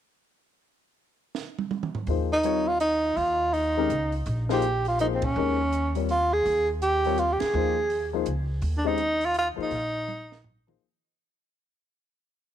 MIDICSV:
0, 0, Header, 1, 6, 480
1, 0, Start_track
1, 0, Tempo, 364299
1, 1293, Time_signature, 3, 2, 24, 8
1, 16531, End_track
2, 0, Start_track
2, 0, Title_t, "Tenor saxophone"
2, 0, Program_c, 0, 66
2, 3064, Note_on_c, 0, 63, 74
2, 3531, Note_on_c, 0, 65, 83
2, 3550, Note_off_c, 0, 63, 0
2, 3688, Note_off_c, 0, 65, 0
2, 3696, Note_on_c, 0, 63, 81
2, 4180, Note_on_c, 0, 65, 81
2, 4200, Note_off_c, 0, 63, 0
2, 4657, Note_on_c, 0, 63, 73
2, 4677, Note_off_c, 0, 65, 0
2, 5442, Note_off_c, 0, 63, 0
2, 5962, Note_on_c, 0, 67, 77
2, 6390, Note_off_c, 0, 67, 0
2, 6427, Note_on_c, 0, 65, 73
2, 6581, Note_off_c, 0, 65, 0
2, 6595, Note_on_c, 0, 63, 72
2, 6675, Note_off_c, 0, 63, 0
2, 6778, Note_on_c, 0, 60, 57
2, 6916, Note_on_c, 0, 61, 78
2, 6936, Note_off_c, 0, 60, 0
2, 7857, Note_off_c, 0, 61, 0
2, 8049, Note_on_c, 0, 65, 80
2, 8340, Note_on_c, 0, 68, 84
2, 8360, Note_off_c, 0, 65, 0
2, 8807, Note_off_c, 0, 68, 0
2, 8990, Note_on_c, 0, 67, 83
2, 9471, Note_on_c, 0, 65, 77
2, 9491, Note_off_c, 0, 67, 0
2, 9653, Note_on_c, 0, 67, 58
2, 9673, Note_off_c, 0, 65, 0
2, 9747, Note_on_c, 0, 68, 79
2, 9767, Note_off_c, 0, 67, 0
2, 10707, Note_off_c, 0, 68, 0
2, 11559, Note_on_c, 0, 62, 61
2, 11684, Note_on_c, 0, 63, 75
2, 11704, Note_off_c, 0, 62, 0
2, 12191, Note_on_c, 0, 65, 86
2, 12211, Note_off_c, 0, 63, 0
2, 12346, Note_off_c, 0, 65, 0
2, 12365, Note_on_c, 0, 65, 85
2, 12491, Note_off_c, 0, 65, 0
2, 12676, Note_on_c, 0, 63, 84
2, 13735, Note_off_c, 0, 63, 0
2, 16531, End_track
3, 0, Start_track
3, 0, Title_t, "Grand piano"
3, 0, Program_c, 1, 0
3, 2746, Note_on_c, 1, 53, 52
3, 2746, Note_on_c, 1, 58, 47
3, 2758, Note_on_c, 1, 68, 47
3, 2759, Note_on_c, 1, 63, 50
3, 2765, Note_on_c, 1, 72, 59
3, 3015, Note_off_c, 1, 53, 0
3, 3015, Note_off_c, 1, 58, 0
3, 3021, Note_off_c, 1, 63, 0
3, 3021, Note_off_c, 1, 68, 0
3, 3024, Note_off_c, 1, 72, 0
3, 3210, Note_on_c, 1, 55, 55
3, 3217, Note_on_c, 1, 60, 53
3, 3220, Note_on_c, 1, 65, 53
3, 3226, Note_on_c, 1, 70, 54
3, 3232, Note_on_c, 1, 73, 68
3, 3487, Note_off_c, 1, 55, 0
3, 3491, Note_off_c, 1, 60, 0
3, 3492, Note_off_c, 1, 65, 0
3, 3495, Note_off_c, 1, 70, 0
3, 3498, Note_off_c, 1, 73, 0
3, 4970, Note_on_c, 1, 51, 66
3, 4974, Note_on_c, 1, 56, 60
3, 4983, Note_on_c, 1, 61, 56
3, 4987, Note_on_c, 1, 70, 68
3, 4992, Note_on_c, 1, 67, 57
3, 5127, Note_off_c, 1, 51, 0
3, 5130, Note_off_c, 1, 56, 0
3, 5134, Note_off_c, 1, 61, 0
3, 5136, Note_off_c, 1, 70, 0
3, 5139, Note_off_c, 1, 67, 0
3, 5918, Note_on_c, 1, 53, 66
3, 5921, Note_on_c, 1, 58, 61
3, 5931, Note_on_c, 1, 63, 64
3, 5931, Note_on_c, 1, 68, 64
3, 5945, Note_on_c, 1, 72, 77
3, 6081, Note_off_c, 1, 53, 0
3, 6083, Note_off_c, 1, 58, 0
3, 6087, Note_off_c, 1, 63, 0
3, 6088, Note_off_c, 1, 68, 0
3, 6095, Note_off_c, 1, 72, 0
3, 6591, Note_on_c, 1, 53, 54
3, 6592, Note_on_c, 1, 58, 52
3, 6602, Note_on_c, 1, 63, 50
3, 6607, Note_on_c, 1, 68, 49
3, 6616, Note_on_c, 1, 72, 63
3, 6857, Note_off_c, 1, 53, 0
3, 6857, Note_off_c, 1, 58, 0
3, 6863, Note_off_c, 1, 63, 0
3, 6865, Note_off_c, 1, 68, 0
3, 6870, Note_off_c, 1, 72, 0
3, 7069, Note_on_c, 1, 56, 46
3, 7070, Note_on_c, 1, 51, 50
3, 7083, Note_on_c, 1, 61, 46
3, 7086, Note_on_c, 1, 67, 46
3, 7088, Note_on_c, 1, 70, 59
3, 7336, Note_off_c, 1, 51, 0
3, 7336, Note_off_c, 1, 56, 0
3, 7343, Note_off_c, 1, 61, 0
3, 7344, Note_off_c, 1, 67, 0
3, 7345, Note_off_c, 1, 70, 0
3, 7842, Note_on_c, 1, 55, 51
3, 7846, Note_on_c, 1, 60, 45
3, 7852, Note_on_c, 1, 65, 41
3, 7859, Note_on_c, 1, 73, 54
3, 7863, Note_on_c, 1, 70, 44
3, 8001, Note_off_c, 1, 55, 0
3, 8002, Note_off_c, 1, 60, 0
3, 8006, Note_off_c, 1, 65, 0
3, 8009, Note_off_c, 1, 73, 0
3, 8011, Note_off_c, 1, 70, 0
3, 9291, Note_on_c, 1, 55, 54
3, 9297, Note_on_c, 1, 60, 54
3, 9303, Note_on_c, 1, 65, 52
3, 9305, Note_on_c, 1, 70, 54
3, 9317, Note_on_c, 1, 73, 63
3, 9443, Note_off_c, 1, 55, 0
3, 9446, Note_off_c, 1, 60, 0
3, 9449, Note_off_c, 1, 65, 0
3, 9450, Note_off_c, 1, 70, 0
3, 9456, Note_off_c, 1, 73, 0
3, 9940, Note_on_c, 1, 53, 53
3, 9946, Note_on_c, 1, 58, 46
3, 9953, Note_on_c, 1, 63, 47
3, 9958, Note_on_c, 1, 68, 47
3, 9966, Note_on_c, 1, 72, 57
3, 10206, Note_off_c, 1, 53, 0
3, 10209, Note_off_c, 1, 58, 0
3, 10212, Note_off_c, 1, 63, 0
3, 10215, Note_off_c, 1, 68, 0
3, 10219, Note_off_c, 1, 72, 0
3, 10716, Note_on_c, 1, 53, 59
3, 10726, Note_on_c, 1, 58, 51
3, 10729, Note_on_c, 1, 63, 53
3, 10730, Note_on_c, 1, 68, 55
3, 10740, Note_on_c, 1, 72, 59
3, 10872, Note_off_c, 1, 53, 0
3, 10877, Note_off_c, 1, 58, 0
3, 10879, Note_off_c, 1, 63, 0
3, 10879, Note_off_c, 1, 68, 0
3, 10885, Note_off_c, 1, 72, 0
3, 11651, Note_on_c, 1, 56, 56
3, 11656, Note_on_c, 1, 61, 52
3, 11660, Note_on_c, 1, 67, 52
3, 11667, Note_on_c, 1, 72, 50
3, 11675, Note_on_c, 1, 75, 61
3, 11819, Note_off_c, 1, 56, 0
3, 11821, Note_off_c, 1, 61, 0
3, 11823, Note_off_c, 1, 67, 0
3, 11827, Note_off_c, 1, 72, 0
3, 11831, Note_off_c, 1, 75, 0
3, 12594, Note_on_c, 1, 53, 58
3, 12602, Note_on_c, 1, 58, 57
3, 12608, Note_on_c, 1, 63, 53
3, 12614, Note_on_c, 1, 72, 69
3, 12616, Note_on_c, 1, 68, 55
3, 12770, Note_off_c, 1, 53, 0
3, 12774, Note_off_c, 1, 58, 0
3, 12777, Note_off_c, 1, 63, 0
3, 12779, Note_off_c, 1, 72, 0
3, 12781, Note_off_c, 1, 68, 0
3, 14061, Note_on_c, 1, 53, 53
3, 14067, Note_on_c, 1, 58, 49
3, 14071, Note_on_c, 1, 63, 51
3, 14076, Note_on_c, 1, 68, 49
3, 14081, Note_on_c, 1, 72, 59
3, 14241, Note_off_c, 1, 53, 0
3, 14244, Note_off_c, 1, 58, 0
3, 14246, Note_off_c, 1, 63, 0
3, 14249, Note_off_c, 1, 68, 0
3, 14251, Note_off_c, 1, 72, 0
3, 16531, End_track
4, 0, Start_track
4, 0, Title_t, "Upright bass"
4, 0, Program_c, 2, 32
4, 2727, Note_on_c, 2, 39, 76
4, 4123, Note_off_c, 2, 39, 0
4, 4171, Note_on_c, 2, 39, 80
4, 5084, Note_off_c, 2, 39, 0
4, 5133, Note_on_c, 2, 37, 66
4, 5584, Note_off_c, 2, 37, 0
4, 5617, Note_on_c, 2, 34, 82
4, 6827, Note_off_c, 2, 34, 0
4, 6879, Note_on_c, 2, 46, 64
4, 7046, Note_off_c, 2, 46, 0
4, 7058, Note_on_c, 2, 39, 83
4, 8442, Note_off_c, 2, 39, 0
4, 8506, Note_on_c, 2, 39, 77
4, 9705, Note_off_c, 2, 39, 0
4, 9929, Note_on_c, 2, 39, 81
4, 10834, Note_off_c, 2, 39, 0
4, 10887, Note_on_c, 2, 37, 69
4, 11332, Note_off_c, 2, 37, 0
4, 11357, Note_on_c, 2, 39, 80
4, 12568, Note_off_c, 2, 39, 0
4, 12793, Note_on_c, 2, 34, 77
4, 14185, Note_off_c, 2, 34, 0
4, 16531, End_track
5, 0, Start_track
5, 0, Title_t, "Muted upright bass strokes"
5, 9767, Note_on_c, 9, 29, 36
5, 9899, Note_off_c, 9, 29, 0
5, 12613, Note_on_c, 9, 29, 38
5, 12744, Note_off_c, 9, 29, 0
5, 16531, End_track
6, 0, Start_track
6, 0, Title_t, "Drums"
6, 1776, Note_on_c, 9, 38, 58
6, 1908, Note_off_c, 9, 38, 0
6, 2089, Note_on_c, 9, 48, 64
6, 2221, Note_off_c, 9, 48, 0
6, 2251, Note_on_c, 9, 48, 78
6, 2382, Note_off_c, 9, 48, 0
6, 2411, Note_on_c, 9, 47, 78
6, 2543, Note_off_c, 9, 47, 0
6, 2566, Note_on_c, 9, 43, 74
6, 2698, Note_off_c, 9, 43, 0
6, 2723, Note_on_c, 9, 46, 35
6, 2855, Note_off_c, 9, 46, 0
6, 3207, Note_on_c, 9, 42, 48
6, 3338, Note_off_c, 9, 42, 0
6, 3691, Note_on_c, 9, 42, 46
6, 3822, Note_off_c, 9, 42, 0
6, 4176, Note_on_c, 9, 46, 36
6, 4308, Note_off_c, 9, 46, 0
6, 4661, Note_on_c, 9, 46, 39
6, 4793, Note_off_c, 9, 46, 0
6, 5138, Note_on_c, 9, 42, 45
6, 5269, Note_off_c, 9, 42, 0
6, 5432, Note_on_c, 9, 46, 32
6, 5564, Note_off_c, 9, 46, 0
6, 5610, Note_on_c, 9, 46, 39
6, 5742, Note_off_c, 9, 46, 0
6, 5921, Note_on_c, 9, 38, 45
6, 6053, Note_off_c, 9, 38, 0
6, 6086, Note_on_c, 9, 42, 44
6, 6218, Note_off_c, 9, 42, 0
6, 6390, Note_on_c, 9, 46, 33
6, 6522, Note_off_c, 9, 46, 0
6, 6576, Note_on_c, 9, 42, 49
6, 6708, Note_off_c, 9, 42, 0
6, 6876, Note_on_c, 9, 51, 58
6, 6886, Note_on_c, 9, 36, 61
6, 7008, Note_off_c, 9, 51, 0
6, 7018, Note_off_c, 9, 36, 0
6, 7544, Note_on_c, 9, 42, 46
6, 7676, Note_off_c, 9, 42, 0
6, 7841, Note_on_c, 9, 46, 34
6, 7973, Note_off_c, 9, 46, 0
6, 8022, Note_on_c, 9, 46, 42
6, 8154, Note_off_c, 9, 46, 0
6, 8507, Note_on_c, 9, 46, 40
6, 8639, Note_off_c, 9, 46, 0
6, 8985, Note_on_c, 9, 42, 48
6, 9117, Note_off_c, 9, 42, 0
6, 9283, Note_on_c, 9, 46, 32
6, 9415, Note_off_c, 9, 46, 0
6, 9457, Note_on_c, 9, 42, 46
6, 9589, Note_off_c, 9, 42, 0
6, 9751, Note_on_c, 9, 51, 49
6, 9758, Note_on_c, 9, 38, 63
6, 9883, Note_off_c, 9, 51, 0
6, 9890, Note_off_c, 9, 38, 0
6, 10408, Note_on_c, 9, 46, 39
6, 10539, Note_off_c, 9, 46, 0
6, 10880, Note_on_c, 9, 42, 46
6, 11012, Note_off_c, 9, 42, 0
6, 11353, Note_on_c, 9, 46, 38
6, 11484, Note_off_c, 9, 46, 0
6, 11828, Note_on_c, 9, 42, 48
6, 11960, Note_off_c, 9, 42, 0
6, 12136, Note_on_c, 9, 46, 36
6, 12268, Note_off_c, 9, 46, 0
6, 12311, Note_on_c, 9, 42, 46
6, 12443, Note_off_c, 9, 42, 0
6, 12789, Note_on_c, 9, 46, 39
6, 12921, Note_off_c, 9, 46, 0
6, 13284, Note_on_c, 9, 48, 42
6, 13416, Note_off_c, 9, 48, 0
6, 13598, Note_on_c, 9, 38, 58
6, 13730, Note_off_c, 9, 38, 0
6, 13759, Note_on_c, 9, 43, 57
6, 13891, Note_off_c, 9, 43, 0
6, 14075, Note_on_c, 9, 47, 68
6, 14207, Note_off_c, 9, 47, 0
6, 16531, End_track
0, 0, End_of_file